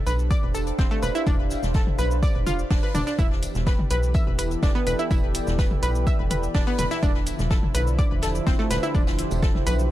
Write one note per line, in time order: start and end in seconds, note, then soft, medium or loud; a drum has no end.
0.00 4.17 D4 medium
0.00 4.34 G4 medium
0.00 0.89 A4 medium
0.00 3.19 C5 medium
0.00 0.89 D5 medium
0.00 0.82 G5 medium
0.07 0.36 B1 medium
0.07 0.16 B4 loud
0.07 tambourine medium
0.07 shaker medium
0.12 3.19 F5 medium
0.19 shaker soft
0.31 0.40 D5 loud
0.31 kick loud
0.31 tambourine medium
0.31 shaker soft
0.43 0.72 E1 medium
0.55 0.60 A4 medium
0.55 tambourine medium
0.55 shaker medium
0.67 closed hi-hat soft
0.67 shaker soft
0.79 0.87 E1 medium
0.79 0.88 C4 loud
0.79 kick loud
0.79 snare loud
0.79 tambourine medium
0.79 shaker soft
0.91 1.00 A3 loud
0.91 snare soft
1.02 1.11 E1 loud
1.02 1.14 B4 loud
1.02 tambourine medium
1.02 shaker medium
1.15 1.26 E4 loud
1.15 shaker soft
1.27 1.56 E1 loud
1.27 1.36 D4 medium
1.27 kick loud
1.27 tambourine medium
1.27 shaker soft
1.51 tambourine medium
1.51 shaker medium
1.63 1.92 E1 medium
1.63 snare medium
1.63 shaker soft
1.74 1.84 A4 medium
1.74 kick loud
1.74 snare loud
1.74 tambourine medium
1.74 shaker soft
1.87 mid tom medium
1.99 2.28 B1 medium
1.99 2.08 B4 loud
1.99 tambourine medium
1.99 shaker medium
2.11 shaker soft
2.23 2.32 D5 loud
2.23 kick loud
2.23 tambourine medium
2.23 shaker soft
2.35 2.64 E1 medium
2.47 2.56 F4 loud
2.47 mid tom medium
2.47 tambourine medium
2.47 shaker medium
2.59 shaker soft
2.70 2.79 E1 medium
2.70 2.76 D4 medium
2.70 kick loud
2.70 snare loud
2.70 open hi-hat medium
2.70 shaker soft
2.83 2.92 B4 medium
2.95 3.03 E1 loud
2.95 3.00 D4 loud
2.95 mid tom medium
2.95 tambourine medium
2.95 shaker medium
3.07 3.16 D4 medium
3.07 snare medium
3.07 shaker soft
3.19 3.48 E1 medium
3.19 6.99 E3 medium
3.19 6.99 B3 medium
3.19 7.03 E4 medium
3.19 3.28 E4 loud
3.19 6.99 G4 medium
3.19 kick loud
3.19 tambourine medium
3.19 shaker soft
3.32 snare soft
3.43 8.07 A4 medium
3.43 closed hi-hat loud
3.43 tambourine medium
3.43 shaker medium
3.55 3.84 E1 medium
3.55 snare soft
3.55 shaker soft
3.66 3.76 B4 medium
3.66 kick loud
3.66 snare loud
3.66 tambourine medium
3.66 shaker soft
3.79 mid tom medium
3.90 4.20 B1 medium
3.90 4.00 B4 loud
3.90 closed hi-hat medium
3.90 tambourine medium
3.90 shaker medium
4.03 7.93 D5 medium
4.03 shaker soft
4.13 4.24 E5 loud
4.13 7.86 G5 medium
4.13 kick loud
4.13 tambourine medium
4.13 shaker soft
4.27 4.56 E1 medium
4.39 4.44 B4 medium
4.39 closed hi-hat loud
4.39 tambourine medium
4.39 shaker medium
4.51 closed hi-hat soft
4.51 shaker soft
4.63 4.71 E1 medium
4.63 4.72 D4 loud
4.63 kick loud
4.63 snare loud
4.63 tambourine medium
4.63 shaker soft
4.75 4.84 B3 loud
4.75 snare soft
4.87 4.95 E1 loud
4.87 4.99 B4 loud
4.87 closed hi-hat medium
4.87 tambourine medium
4.87 shaker medium
4.99 5.10 E4 loud
4.99 shaker soft
5.11 5.40 E1 loud
5.11 5.20 E4 loud
5.11 kick loud
5.11 tambourine medium
5.11 shaker soft
5.35 closed hi-hat loud
5.35 tambourine medium
5.35 shaker medium
5.47 5.76 E1 medium
5.47 snare medium
5.47 shaker soft
5.58 5.68 B4 medium
5.58 kick loud
5.58 snare loud
5.58 tambourine medium
5.58 shaker soft
5.71 mid tom medium
5.82 6.12 B1 medium
5.82 5.92 B4 loud
5.82 closed hi-hat medium
5.82 tambourine medium
5.82 shaker medium
5.95 shaker soft
6.07 6.16 E5 loud
6.07 kick loud
6.07 tambourine medium
6.07 shaker soft
6.19 6.48 E1 medium
6.30 6.36 B4 medium
6.30 closed hi-hat loud
6.30 mid tom medium
6.30 tambourine medium
6.30 shaker medium
6.43 shaker soft
6.54 6.63 E1 medium
6.54 6.64 D4 loud
6.54 kick loud
6.54 snare loud
6.54 open hi-hat medium
6.54 shaker soft
6.67 6.76 B3 loud
6.78 6.87 E1 loud
6.78 6.90 B4 loud
6.78 closed hi-hat medium
6.78 mid tom medium
6.78 tambourine medium
6.78 shaker medium
6.91 7.02 E4 loud
6.91 snare medium
6.91 shaker soft
7.03 7.32 E1 loud
7.03 9.91 D3 medium
7.03 9.91 F3 medium
7.03 9.91 D4 medium
7.03 7.12 D4 loud
7.03 9.91 E4 medium
7.03 kick loud
7.03 tambourine medium
7.03 shaker soft
7.14 snare soft
7.27 9.91 C5 medium
7.27 closed hi-hat loud
7.27 tambourine medium
7.27 shaker medium
7.39 7.68 E1 medium
7.39 9.91 G4 medium
7.39 snare medium
7.39 shaker soft
7.50 7.60 A4 medium
7.50 kick loud
7.50 snare loud
7.50 tambourine medium
7.50 shaker soft
7.63 mid tom medium
7.75 8.04 B1 medium
7.75 7.84 B4 loud
7.75 closed hi-hat medium
7.75 tambourine medium
7.75 shaker medium
7.87 shaker soft
7.98 8.08 D5 loud
7.98 kick loud
7.98 tambourine medium
7.98 shaker soft
8.11 8.40 E1 medium
8.22 8.28 A4 medium
8.22 snare loud
8.22 closed hi-hat loud
8.22 tambourine medium
8.22 shaker medium
8.35 closed hi-hat soft
8.35 shaker soft
8.47 8.55 E1 medium
8.47 8.56 C4 loud
8.47 kick loud
8.47 snare loud
8.47 tambourine medium
8.47 shaker soft
8.59 8.68 A3 loud
8.59 snare soft
8.71 8.79 E1 loud
8.71 8.82 B4 loud
8.71 snare loud
8.71 closed hi-hat medium
8.71 tambourine medium
8.71 shaker medium
8.83 8.94 E4 loud
8.83 snare soft
8.83 shaker soft
8.95 9.24 E1 loud
8.95 9.04 D4 loud
8.95 kick loud
8.95 tambourine medium
8.95 shaker soft
9.07 snare loud
9.07 tambourine medium
9.19 snare soft
9.19 closed hi-hat loud
9.19 shaker medium
9.31 9.60 E1 medium
9.31 tambourine medium
9.31 shaker soft
9.42 9.52 A4 medium
9.42 kick loud
9.42 snare loud
9.42 tambourine medium
9.42 shaker soft
9.55 snare soft
9.55 mid tom medium
9.67 9.91 B1 medium
9.67 9.76 B4 loud
9.67 closed hi-hat medium
9.67 tambourine medium
9.67 shaker medium
9.79 shaker soft